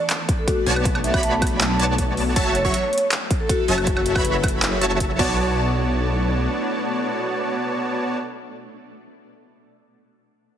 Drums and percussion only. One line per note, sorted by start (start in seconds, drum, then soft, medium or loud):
0.10 clap loud
0.10 closed hi-hat medium
0.29 kick loud
0.29 closed hi-hat medium
0.48 kick loud
0.48 closed hi-hat medium
0.67 open hi-hat medium
0.76 high woodblock medium
0.85 kick loud
0.85 closed hi-hat medium
0.95 high woodblock medium
1.04 closed hi-hat medium
1.14 kick loud
1.14 high woodblock medium
1.23 closed hi-hat medium
1.42 kick loud
1.42 closed hi-hat soft
1.42 high woodblock medium
1.47 closed hi-hat medium
1.61 clap loud
1.61 closed hi-hat medium
1.80 closed hi-hat medium
1.98 kick medium
1.98 closed hi-hat medium
2.17 open hi-hat medium
2.36 kick loud
2.36 closed hi-hat medium
2.55 closed hi-hat medium
2.65 kick medium
2.74 closed hi-hat medium
2.93 closed hi-hat soft
2.98 closed hi-hat medium
3.12 clap loud
3.12 closed hi-hat medium
3.31 kick loud
3.31 closed hi-hat medium
3.49 kick loud
3.49 closed hi-hat medium
3.68 open hi-hat medium
3.78 high woodblock medium
3.87 kick loud
3.87 closed hi-hat medium
3.97 high woodblock medium
4.06 closed hi-hat medium
4.15 kick loud
4.15 high woodblock medium
4.25 closed hi-hat medium
4.44 kick loud
4.44 closed hi-hat medium
4.44 high woodblock medium
4.48 closed hi-hat medium
4.62 clap loud
4.62 closed hi-hat medium
4.81 closed hi-hat medium
5.00 kick medium
5.00 closed hi-hat medium
5.19 kick loud
5.19 crash medium